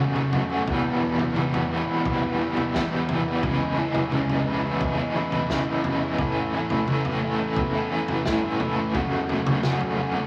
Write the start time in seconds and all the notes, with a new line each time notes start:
Already playing: E1 F#2
0.00 C#3 F#3 A3 C#4 F#4
0.15 F#3 A3 C#4 F#4, mid tom
0.33 F#3 A3 C#4 F#4, floor tom
0.51 F#3 A3 C#4 F#4
0.68 E1 E2 B2 E3 G3 B3 E4, kick, floor tom
1.02 E3 G3 B3 E4
1.19 E3 G3 B3 E4, floor tom
1.36 E1 E2 B2 E3 G3 B3 E4, mid tom
1.54 floor tom
1.70 E3 G3 B3 E4
1.88 E3 G3 B3 E4
2.05 B1, kick, floor tom
2.22 E3 G3 B3 E4
2.39 E3 G3 B3 E4
2.57 floor tom
2.74 E1 E2 B2 E3 G3 B3 E4, kick, snare
2.90 E3 G3 B3 E4
3.08 E3 G3 B3 E4, floor tom
3.25 E3 G3 B3 E4
3.43 C#2 C#3 E3 G#3 C#4 E4, kick, floor tom
3.77 E3 G#3 C#4 E4
3.94 G#3 C#4 E4, floor tom
4.11 C#2 C#3 E3 G#3 C#4 E4, mid tom
4.30 floor tom
4.45 E3 G#3 C#4 E4
4.64 G#3 C#4 E4
4.81 E2, kick, floor tom
4.97 G#3 C#4 E4
5.14 E3 G#3 C#4 E4
5.32 B1, floor tom
5.49 C#3 E3 G#3 C#4 E4, kick, snare
5.66 G#3 C#4 E4
5.84 E3 G#3 C#4 E4, floor tom
6.02 G#3 C#4 E4
6.18 A1 A2 E3 A3 C#4 E4, kick, floor tom
6.54 E3 A3 C#4 E4
6.70 A3 C#4 E4, floor tom
6.87 A1 A2 E3 A3 C#4 E4, mid tom
7.05 floor tom
7.22 E3 A3 C#4 E4
7.39 A3 C#4 E4
7.56 E2, kick, floor tom
7.73 A3 C#4 E4
7.90 E3 A3 C#4 E4
8.08 floor tom
8.25 G1 A2 E3 A3 C#4 E4, kick, snare
8.42 A3 C#4 E4
8.58 E3 A3 C#4 E4, floor tom
8.76 A3 C#4 E4
8.94 F#1 F#2 C#3 F#3 A3 C#4 F#4, kick, floor tom
9.28 F#3 A3 C#4 F#4, floor tom
9.45 F#3 A3 C#4 F#4, floor tom, mid tom
9.63 F#1 F#2 C#3 F#3 A3 C#4 F#4, snare, mid tom
9.81 floor tom
9.97 F#3 A3 C#4 F#4
10.14 F#3 A3 C#4 F#4